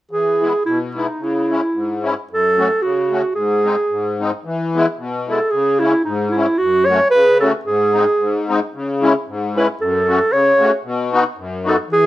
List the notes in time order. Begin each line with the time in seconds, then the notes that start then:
0.11 E3 G#4
0.41 G#3 B3 E4
0.66 B2 E4
0.95 G#3 B3 D#4 E4
1.19 C#3
1.23 E4
1.50 G#3 C#4 E4
1.74 G#2
2.03 G#3 C#4 E4
2.30 F#2 A4
2.58 A3 C#4 F#4
2.82 C#3 F#4
3.11 A3 C#4 F#4
3.35 G#2 G#4
3.64 G#3 C4 D#4
3.90 G#2
4.20 G#3 C4 D#4
4.45 E3
4.75 G#3 B3 E4
4.98 B2
5.28 G#3 B3 E4 A4
5.51 C#3 G#4
5.80 G#3 C#4 E4
6.05 G#2 D#4
6.31 E4
6.36 G#3 C#4 E4
6.58 F#2 F#4
6.85 A3 C#5
6.90 C#4 F#4
7.10 C#3 B4
7.40 A3 C#4 F#4 A4
7.65 G#2 G#4
7.93 G#3 C4 D#4
8.19 G#2
8.49 G#3 C4 D#4
8.75 C#3
9.02 G#3 C#4 E4
9.28 G#2
9.56 G#3 C#4 E4 B4
9.80 F#2 A4
10.08 A3 C#4 F#4
10.32 C#3 C#5
10.60 A3 C#4 F#4
10.84 B2
11.12 B3 D#4 F#4
11.37 F#2
11.65 B3 D#4 F#4 A4
11.89 E3
11.93 G#4